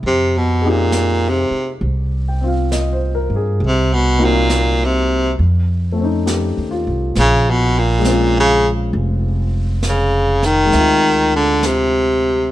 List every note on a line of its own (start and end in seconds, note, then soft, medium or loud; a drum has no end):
0.03 1.48 F2 medium
0.03 brush sweep soft
0.07 0.39 C3 medium
0.38 0.71 B2 medium
0.62 2.39 C4 soft
0.62 3.62 D#4 soft
0.62 3.34 G#4 soft
0.66 1.31 A#2 medium
0.66 3.63 G4 soft
0.92 snare soft
0.92 hi-hat pedal soft
1.29 1.76 C3 medium
1.50 muted upright bass stroke soft
1.81 3.26 C2 medium
1.81 brush sweep soft
2.28 2.55 G5 soft
2.41 3.61 C4 soft
2.41 3.62 F4 soft
2.48 2.80 F5 soft
2.72 3.13 D#5 soft
2.72 snare soft
2.72 hi-hat pedal soft
2.93 3.31 C5 soft
3.15 3.43 A#4 soft
3.30 3.58 G2 medium
3.36 3.68 G#4 medium
3.60 5.34 C2 medium
3.60 brush sweep soft
3.67 3.95 C3 medium
3.94 4.26 B2 medium
4.19 5.38 A#3 medium
4.19 5.38 C4 soft
4.19 5.38 D#4 soft
4.19 5.38 F#4 medium
4.25 4.86 A#2 medium
4.50 snare soft
4.50 hi-hat pedal soft
4.85 5.31 C3 medium
5.39 6.53 F2 medium
5.39 brush sweep soft
5.92 7.13 A3 soft
5.92 7.15 C4 soft
6.01 7.17 C#4 soft
6.01 7.19 D#4 soft
6.26 6.96 G4 soft
6.26 snare soft
6.26 hi-hat pedal soft
6.57 6.84 D#2 medium
6.71 7.34 F4 soft
6.87 7.14 C2 medium
7.15 8.89 A#1 medium
7.15 brush sweep soft
7.15 snare soft
7.19 7.52 C#3 medium
7.51 7.80 B2 medium
7.79 8.36 A#2 medium
7.99 10.63 G#3 soft
7.99 10.68 C4 soft
8.04 10.73 C#4 soft
8.04 snare soft
8.04 hi-hat pedal soft
8.09 10.74 F4 medium
8.40 8.68 C#3 medium
8.93 10.68 F1 medium
8.93 brush sweep soft
9.83 snare soft
9.83 hi-hat pedal medium
9.89 10.46 C#3 medium
10.42 11.33 D#3 loud
10.42 snare soft
10.65 12.48 G#3 soft
10.70 12.48 D2 medium
10.70 12.50 C4 soft
10.70 12.52 E5 soft
10.70 brush sweep soft
10.70 snare soft
10.76 12.52 F4 soft
11.36 11.68 D3 medium
11.63 12.52 C3 medium
11.63 snare soft
11.63 hi-hat pedal medium